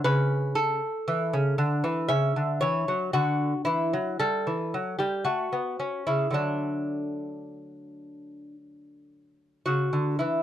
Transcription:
0.04 0.80 C#3 loud
0.04 0.55 B4 loud
0.55 2.06 A4 loud
1.08 1.33 E3 medium
1.33 1.58 C#3 medium
1.58 1.83 D3 medium
1.84 2.09 E3 medium
2.08 2.35 C#3 medium
2.08 2.59 E5 loud
2.36 2.61 D3 medium
2.61 2.87 E3 medium
2.61 3.11 C#5 loud
2.88 3.13 F#3 medium
3.13 3.52 D3 medium
3.13 3.64 F#4 loud
3.65 3.93 E3 medium
3.65 4.18 E4 loud
3.93 4.20 F#3 medium
4.19 4.47 G3 medium
4.19 4.97 A4 loud
4.47 4.73 E3 medium
4.74 4.99 F#3 medium
4.99 5.26 G3 medium
4.99 5.27 G4 medium
5.25 5.52 A3 medium
5.25 6.04 F#4 medium
5.53 5.79 B3 medium
5.80 6.07 C#4 medium
6.07 6.30 C#3 medium
6.07 6.34 E4 medium
6.31 9.60 D3 medium
6.31 9.61 F#3 soft
6.31 9.62 A3 medium
6.31 8.52 D4 medium
9.66 9.92 C#3 medium
9.66 10.18 F#4 medium
9.93 10.19 D3 medium
10.19 10.43 E3 medium
10.19 10.43 E4 medium

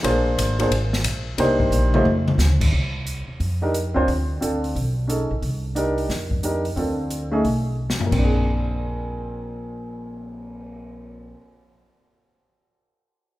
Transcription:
0.03 0.37 A#1 medium
0.03 0.54 A#3 medium
0.03 0.55 D4 medium
0.03 0.55 F4 medium
0.03 0.55 G#4 medium
0.03 0.55 C5 medium
0.03 kick soft
0.03 ride medium
0.38 0.70 G#1 medium
0.38 kick soft
0.38 hi-hat pedal medium
0.38 ride medium
0.59 0.70 A#3 medium
0.59 0.70 D4 medium
0.59 0.70 F4 medium
0.59 0.71 G#4 medium
0.59 0.71 C5 medium
0.59 ride soft
0.71 1.04 G#1 medium
0.71 kick soft
0.71 ride medium
0.93 snare soft
1.04 1.37 A#1 medium
1.04 kick soft
1.04 hi-hat pedal medium
1.04 ride medium
1.38 1.70 C2 medium
1.38 1.89 A#3 medium
1.38 1.89 D4 medium
1.38 1.90 D#4 medium
1.38 1.90 G4 medium
1.38 1.90 C5 medium
1.38 kick soft
1.38 ride medium
1.60 kick medium
1.71 2.04 A#1 medium
1.71 hi-hat pedal medium
1.71 mid tom soft
1.94 2.05 A3 medium
1.94 2.05 D#4 medium
1.94 2.05 F4 medium
1.94 2.05 G4 medium
1.94 2.05 C5 medium
1.94 mid tom medium
2.04 2.37 F2 medium
2.04 mid tom medium
2.28 mid tom medium
2.38 2.71 D2 medium
2.38 snare medium
2.38 hi-hat pedal medium
2.61 kick medium
2.61 crash medium
2.73 3.24 C2 medium
2.73 kick soft
3.07 closed hi-hat medium
3.28 muted upright bass stroke soft
3.40 3.92 F2 medium
3.40 kick soft
3.40 open hi-hat soft
3.62 3.73 D4 medium
3.62 3.73 D#4 medium
3.62 3.73 G4 medium
3.62 3.73 A#4 medium
3.74 closed hi-hat medium
3.94 4.07 C#2 medium
3.94 4.06 C4 medium
3.94 4.06 D4 medium
3.94 4.07 F4 medium
3.94 4.07 C5 medium
4.08 4.39 D2 medium
4.08 kick soft
4.08 open hi-hat soft
4.41 4.73 D2 medium
4.41 4.75 C4 medium
4.41 4.75 D4 soft
4.41 4.75 F4 soft
4.41 4.76 A4 medium
4.41 closed hi-hat soft
4.64 open hi-hat soft
4.76 5.27 B1 medium
4.76 kick soft
4.76 open hi-hat soft
5.08 5.28 C#4 medium
5.08 5.28 D#4 soft
5.08 5.28 G#4 medium
5.08 5.28 A4 medium
5.08 closed hi-hat medium
5.31 5.42 A1 medium
5.42 6.06 C2 medium
5.42 kick soft
5.42 open hi-hat soft
5.75 6.09 D4 medium
5.75 6.10 D#4 medium
5.75 6.10 G4 medium
5.75 6.10 A#4 medium
5.75 closed hi-hat medium
5.98 open hi-hat soft
6.09 6.73 F2 medium
6.09 kick soft
6.09 snare soft
6.09 open hi-hat soft
6.31 kick soft
6.43 6.63 D4 medium
6.43 6.63 D#4 soft
6.43 6.63 G4 medium
6.43 6.64 A#4 medium
6.43 closed hi-hat soft
6.65 open hi-hat soft
6.76 7.41 D2 medium
6.76 7.28 C4 medium
6.76 7.28 D4 soft
6.76 7.29 F4 soft
6.76 7.29 A4 medium
6.76 kick soft
6.76 open hi-hat soft
7.11 closed hi-hat medium
7.31 7.43 A3 medium
7.31 7.43 C#4 medium
7.31 7.43 D#4 medium
7.31 7.43 G#4 medium
7.44 7.96 B1 medium
7.44 kick soft
7.44 open hi-hat soft
7.90 snare medium
7.99 11.24 A#2 medium
7.99 muted upright bass stroke soft
7.99 floor tom medium
8.05 11.30 A#3 medium
8.12 11.33 A#1 medium
8.12 11.37 C4 medium
8.12 kick medium
8.12 crash medium
8.18 11.42 D4 medium
8.24 11.49 G#4 medium
8.34 cymbal swell soft

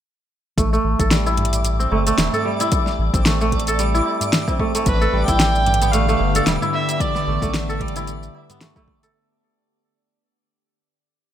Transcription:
0.57 0.79 A1 loud
0.57 0.72 A3 medium
0.57 9.16 D5 medium
0.57 kick loud
0.57 closed hi-hat medium
0.57 shaker soft
0.73 1.91 A3 loud
0.73 shaker soft
0.84 0.96 A1 medium
0.84 tabla tin soft
0.99 1.87 A1 medium
0.99 2.32 A4 medium
0.99 kick medium
0.99 closed hi-hat soft
0.99 shaker medium
1.11 2.44 G3 medium
1.11 snare loud
1.11 closed hi-hat medium
1.11 shaker soft
1.26 2.60 E4 medium
1.26 tabla tin soft
1.26 shaker soft
1.37 closed hi-hat soft
1.37 tabla ge medium
1.45 closed hi-hat soft
1.53 closed hi-hat soft
1.53 tabla na soft
1.53 shaker medium
1.65 closed hi-hat medium
1.65 shaker medium
1.80 3.14 C4 medium
1.80 shaker soft
1.91 2.13 G1 medium
1.91 2.06 A3 medium
1.91 tabla na medium
1.91 tabla tin soft
2.07 3.26 A3 loud
2.07 closed hi-hat soft
2.07 shaker medium
2.18 2.30 E1 medium
2.18 snare loud
2.18 closed hi-hat medium
2.18 tabla na medium
2.18 shaker medium
2.33 3.65 A4 medium
2.33 tabla ge medium
2.33 shaker soft
2.45 3.78 G3 medium
2.45 tabla na medium
2.45 tabla tin soft
2.60 3.94 E4 medium
2.60 closed hi-hat soft
2.60 tabla na medium
2.60 shaker medium
2.72 kick loud
2.72 closed hi-hat medium
2.72 shaker medium
2.87 snare soft
2.87 shaker soft
2.99 3.10 A1 medium
3.14 4.01 A1 medium
3.14 4.48 C4 medium
3.14 kick loud
3.14 closed hi-hat soft
3.14 shaker medium
3.26 3.41 A3 medium
3.26 snare loud
3.26 closed hi-hat medium
3.26 shaker medium
3.41 4.59 A3 medium
3.41 shaker soft
3.52 kick medium
3.52 closed hi-hat soft
3.60 closed hi-hat soft
3.67 5.00 A4 loud
3.67 closed hi-hat soft
3.67 tabla na soft
3.67 shaker medium
3.79 4.91 G3 medium
3.79 closed hi-hat medium
3.79 shaker medium
3.94 5.28 E4 medium
3.94 shaker soft
4.05 tabla na medium
4.21 closed hi-hat soft
4.21 tabla ge medium
4.21 shaker medium
4.33 snare loud
4.33 closed hi-hat medium
4.33 shaker medium
4.48 5.88 C4 medium
4.48 kick medium
4.48 tabla na medium
4.48 shaker soft
4.60 4.74 A3 medium
4.60 kick medium
4.75 5.93 A3 loud
4.75 closed hi-hat soft
4.75 tabla na medium
4.75 shaker medium
4.86 5.07 A1 loud
4.86 9.11 D3 medium
4.86 9.11 B3 medium
4.86 9.11 G4 medium
4.86 5.25 B4 loud
4.86 kick loud
4.86 closed hi-hat medium
4.86 shaker medium
5.01 6.33 A4 loud
5.01 shaker soft
5.13 5.24 A1 medium
5.13 6.46 G3 medium
5.13 tabla tin soft
5.27 6.16 A1 medium
5.27 6.62 E4 medium
5.27 5.93 G5 loud
5.27 kick loud
5.27 closed hi-hat soft
5.27 shaker medium
5.40 snare loud
5.40 closed hi-hat medium
5.40 shaker medium
5.55 shaker soft
5.66 closed hi-hat soft
5.66 tabla ge medium
5.74 closed hi-hat soft
5.82 7.15 B3 medium
5.82 closed hi-hat soft
5.82 tabla na soft
5.82 shaker medium
5.92 6.08 A3 medium
5.92 6.46 F5 loud
5.92 closed hi-hat medium
5.92 shaker medium
6.09 7.27 A3 medium
6.09 shaker soft
6.19 6.41 G1 loud
6.19 tabla na medium
6.19 tabla tin soft
6.35 7.67 A4 loud
6.35 closed hi-hat soft
6.35 shaker medium
6.47 6.58 E1 medium
6.47 7.80 G3 medium
6.47 snare loud
6.47 closed hi-hat medium
6.47 tabla na medium
6.47 shaker medium
6.61 7.96 E4 medium
6.61 tabla ge medium
6.61 shaker soft
6.73 7.03 E5 loud
6.73 tabla na medium
6.73 tabla tin soft
6.88 closed hi-hat soft
6.88 tabla na medium
6.88 shaker medium
7.00 7.55 D5 loud
7.00 kick loud
7.00 closed hi-hat medium
7.00 shaker medium
7.15 8.50 B3 medium
7.15 snare soft
7.15 shaker soft
7.27 7.39 A1 loud
7.27 7.42 A3 medium
7.42 8.30 A1 medium
7.42 8.61 A3 medium
7.42 kick loud
7.42 closed hi-hat soft
7.42 shaker medium
7.54 snare loud
7.54 closed hi-hat medium
7.54 shaker medium
7.69 9.01 A4 loud
7.69 tabla tin soft
7.69 shaker soft
7.81 9.20 G3 medium
7.81 kick medium
7.81 closed hi-hat soft
7.88 closed hi-hat soft
7.96 9.53 E4 loud
7.96 closed hi-hat soft
7.96 tabla na soft
7.96 shaker medium
8.07 closed hi-hat soft
8.07 shaker medium
8.23 shaker soft
8.35 tabla na medium
8.50 10.36 B3 medium
8.50 closed hi-hat soft
8.50 tabla ge medium
8.50 shaker medium
8.61 8.76 A3 medium
8.61 snare loud
8.61 closed hi-hat medium
8.61 shaker medium
8.76 10.76 A3 medium
8.76 kick loud
8.76 tabla na medium
8.76 shaker soft
8.88 kick medium
9.03 10.35 A4 loud
9.03 closed hi-hat soft
9.03 tabla na medium
9.03 shaker medium

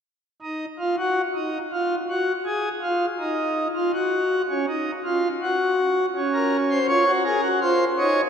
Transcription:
0.42 0.65 D#4 medium
0.79 0.96 F4 medium
0.98 1.21 F#4 medium
1.35 1.58 D#4 medium
1.72 1.95 F4 medium
2.09 2.32 F#4 medium
2.46 2.69 G#4 medium
2.83 3.06 F4 medium
3.19 3.68 D#4 medium
3.75 3.92 F4 medium
3.94 4.42 F#4 medium
4.49 4.66 C#4 medium
4.68 4.91 D#4 medium
5.05 5.28 F4 medium
5.42 6.06 F#4 medium
6.16 6.79 C#4 medium
6.34 6.57 A#4 medium
6.71 6.86 C5 medium
6.89 7.05 F4 medium
6.89 7.11 C#5 medium
7.07 7.23 F#4 medium
7.25 7.41 G#4 medium
7.25 7.48 A#4 medium
7.43 7.59 F#4 medium
7.61 7.85 F4 medium
7.61 7.84 C5 medium
7.98 8.21 D#4 medium
7.98 8.21 C#5 medium

